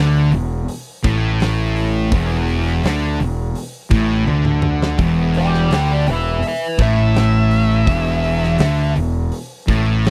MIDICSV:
0, 0, Header, 1, 5, 480
1, 0, Start_track
1, 0, Tempo, 720288
1, 1411, Time_signature, 4, 2, 24, 8
1, 6731, End_track
2, 0, Start_track
2, 0, Title_t, "Lead electric guitar"
2, 0, Program_c, 0, 29
2, 3583, Note_on_c, 0, 74, 80
2, 3585, Note_on_c, 0, 79, 81
2, 3810, Note_off_c, 0, 79, 0
2, 3813, Note_off_c, 0, 74, 0
2, 3821, Note_on_c, 0, 74, 73
2, 3824, Note_on_c, 0, 79, 83
2, 4040, Note_off_c, 0, 74, 0
2, 4051, Note_off_c, 0, 79, 0
2, 4064, Note_on_c, 0, 71, 82
2, 4071, Note_on_c, 0, 76, 93
2, 4282, Note_off_c, 0, 71, 0
2, 4295, Note_off_c, 0, 76, 0
2, 4315, Note_on_c, 0, 76, 98
2, 4318, Note_on_c, 0, 71, 88
2, 4530, Note_off_c, 0, 71, 0
2, 4537, Note_off_c, 0, 76, 0
2, 4546, Note_on_c, 0, 76, 108
2, 5956, Note_off_c, 0, 76, 0
2, 6731, End_track
3, 0, Start_track
3, 0, Title_t, "Distorted electric guitar"
3, 0, Program_c, 1, 30
3, 0, Note_on_c, 1, 50, 113
3, 209, Note_off_c, 1, 50, 0
3, 216, Note_on_c, 1, 40, 71
3, 406, Note_off_c, 1, 40, 0
3, 697, Note_on_c, 1, 45, 105
3, 1406, Note_off_c, 1, 45, 0
3, 1413, Note_on_c, 1, 40, 112
3, 1884, Note_off_c, 1, 40, 0
3, 1897, Note_on_c, 1, 50, 115
3, 2127, Note_off_c, 1, 50, 0
3, 2135, Note_on_c, 1, 40, 72
3, 2325, Note_off_c, 1, 40, 0
3, 2607, Note_on_c, 1, 45, 97
3, 2850, Note_off_c, 1, 45, 0
3, 2850, Note_on_c, 1, 50, 99
3, 3323, Note_off_c, 1, 50, 0
3, 3326, Note_on_c, 1, 40, 107
3, 3801, Note_on_c, 1, 50, 113
3, 3802, Note_off_c, 1, 40, 0
3, 4039, Note_off_c, 1, 50, 0
3, 4048, Note_on_c, 1, 40, 73
3, 4242, Note_off_c, 1, 40, 0
3, 4521, Note_on_c, 1, 45, 109
3, 5240, Note_on_c, 1, 40, 106
3, 5241, Note_off_c, 1, 45, 0
3, 5721, Note_off_c, 1, 40, 0
3, 5721, Note_on_c, 1, 50, 111
3, 5962, Note_off_c, 1, 50, 0
3, 5973, Note_on_c, 1, 40, 70
3, 6168, Note_off_c, 1, 40, 0
3, 6456, Note_on_c, 1, 45, 113
3, 6731, Note_off_c, 1, 45, 0
3, 6731, End_track
4, 0, Start_track
4, 0, Title_t, "Fingered electric bass"
4, 0, Program_c, 2, 33
4, 0, Note_on_c, 2, 38, 94
4, 199, Note_off_c, 2, 38, 0
4, 208, Note_on_c, 2, 28, 91
4, 433, Note_off_c, 2, 28, 0
4, 696, Note_on_c, 2, 33, 94
4, 1387, Note_off_c, 2, 33, 0
4, 1412, Note_on_c, 2, 28, 104
4, 1864, Note_off_c, 2, 28, 0
4, 1896, Note_on_c, 2, 38, 92
4, 2116, Note_off_c, 2, 38, 0
4, 2134, Note_on_c, 2, 28, 87
4, 2356, Note_off_c, 2, 28, 0
4, 2603, Note_on_c, 2, 33, 96
4, 2830, Note_off_c, 2, 33, 0
4, 2848, Note_on_c, 2, 38, 99
4, 3303, Note_off_c, 2, 38, 0
4, 3319, Note_on_c, 2, 28, 92
4, 3779, Note_off_c, 2, 28, 0
4, 3803, Note_on_c, 2, 38, 87
4, 4030, Note_off_c, 2, 38, 0
4, 4048, Note_on_c, 2, 28, 85
4, 4274, Note_off_c, 2, 28, 0
4, 4518, Note_on_c, 2, 33, 100
4, 5221, Note_off_c, 2, 33, 0
4, 5241, Note_on_c, 2, 28, 90
4, 5703, Note_off_c, 2, 28, 0
4, 5728, Note_on_c, 2, 38, 93
4, 5956, Note_off_c, 2, 38, 0
4, 5968, Note_on_c, 2, 28, 90
4, 6196, Note_off_c, 2, 28, 0
4, 6450, Note_on_c, 2, 33, 96
4, 6731, Note_off_c, 2, 33, 0
4, 6731, End_track
5, 0, Start_track
5, 0, Title_t, "Drums"
5, 212, Note_on_c, 9, 46, 58
5, 279, Note_off_c, 9, 46, 0
5, 456, Note_on_c, 9, 46, 91
5, 522, Note_off_c, 9, 46, 0
5, 695, Note_on_c, 9, 36, 105
5, 699, Note_on_c, 9, 46, 62
5, 762, Note_off_c, 9, 36, 0
5, 765, Note_off_c, 9, 46, 0
5, 933, Note_on_c, 9, 46, 87
5, 947, Note_on_c, 9, 38, 111
5, 1000, Note_off_c, 9, 46, 0
5, 1013, Note_off_c, 9, 38, 0
5, 1173, Note_on_c, 9, 46, 70
5, 1240, Note_off_c, 9, 46, 0
5, 1410, Note_on_c, 9, 46, 87
5, 1412, Note_on_c, 9, 36, 112
5, 1477, Note_off_c, 9, 46, 0
5, 1479, Note_off_c, 9, 36, 0
5, 1645, Note_on_c, 9, 46, 71
5, 1711, Note_off_c, 9, 46, 0
5, 1778, Note_on_c, 9, 38, 33
5, 1845, Note_off_c, 9, 38, 0
5, 1890, Note_on_c, 9, 46, 91
5, 1903, Note_on_c, 9, 38, 113
5, 1957, Note_off_c, 9, 46, 0
5, 1970, Note_off_c, 9, 38, 0
5, 2133, Note_on_c, 9, 46, 67
5, 2199, Note_off_c, 9, 46, 0
5, 2368, Note_on_c, 9, 46, 96
5, 2434, Note_off_c, 9, 46, 0
5, 2604, Note_on_c, 9, 46, 61
5, 2606, Note_on_c, 9, 36, 109
5, 2671, Note_off_c, 9, 46, 0
5, 2673, Note_off_c, 9, 36, 0
5, 2849, Note_on_c, 9, 48, 65
5, 2915, Note_off_c, 9, 48, 0
5, 2964, Note_on_c, 9, 47, 70
5, 3031, Note_off_c, 9, 47, 0
5, 3080, Note_on_c, 9, 45, 99
5, 3146, Note_off_c, 9, 45, 0
5, 3215, Note_on_c, 9, 38, 96
5, 3282, Note_off_c, 9, 38, 0
5, 3318, Note_on_c, 9, 46, 75
5, 3324, Note_on_c, 9, 36, 105
5, 3385, Note_off_c, 9, 46, 0
5, 3391, Note_off_c, 9, 36, 0
5, 3560, Note_on_c, 9, 46, 66
5, 3627, Note_off_c, 9, 46, 0
5, 3692, Note_on_c, 9, 38, 32
5, 3759, Note_off_c, 9, 38, 0
5, 3803, Note_on_c, 9, 46, 80
5, 3816, Note_on_c, 9, 38, 120
5, 3870, Note_off_c, 9, 46, 0
5, 3883, Note_off_c, 9, 38, 0
5, 4044, Note_on_c, 9, 46, 66
5, 4111, Note_off_c, 9, 46, 0
5, 4282, Note_on_c, 9, 46, 93
5, 4349, Note_off_c, 9, 46, 0
5, 4521, Note_on_c, 9, 46, 64
5, 4524, Note_on_c, 9, 36, 107
5, 4588, Note_off_c, 9, 46, 0
5, 4590, Note_off_c, 9, 36, 0
5, 4762, Note_on_c, 9, 46, 82
5, 4775, Note_on_c, 9, 38, 117
5, 4828, Note_off_c, 9, 46, 0
5, 4842, Note_off_c, 9, 38, 0
5, 5005, Note_on_c, 9, 46, 69
5, 5071, Note_off_c, 9, 46, 0
5, 5246, Note_on_c, 9, 36, 108
5, 5250, Note_on_c, 9, 46, 90
5, 5313, Note_off_c, 9, 36, 0
5, 5316, Note_off_c, 9, 46, 0
5, 5490, Note_on_c, 9, 46, 74
5, 5557, Note_off_c, 9, 46, 0
5, 5620, Note_on_c, 9, 38, 34
5, 5687, Note_off_c, 9, 38, 0
5, 5720, Note_on_c, 9, 46, 96
5, 5734, Note_on_c, 9, 38, 120
5, 5787, Note_off_c, 9, 46, 0
5, 5800, Note_off_c, 9, 38, 0
5, 5970, Note_on_c, 9, 46, 64
5, 6036, Note_off_c, 9, 46, 0
5, 6210, Note_on_c, 9, 46, 95
5, 6276, Note_off_c, 9, 46, 0
5, 6453, Note_on_c, 9, 36, 107
5, 6455, Note_on_c, 9, 46, 63
5, 6520, Note_off_c, 9, 36, 0
5, 6522, Note_off_c, 9, 46, 0
5, 6695, Note_on_c, 9, 46, 83
5, 6709, Note_on_c, 9, 38, 105
5, 6731, Note_off_c, 9, 38, 0
5, 6731, Note_off_c, 9, 46, 0
5, 6731, End_track
0, 0, End_of_file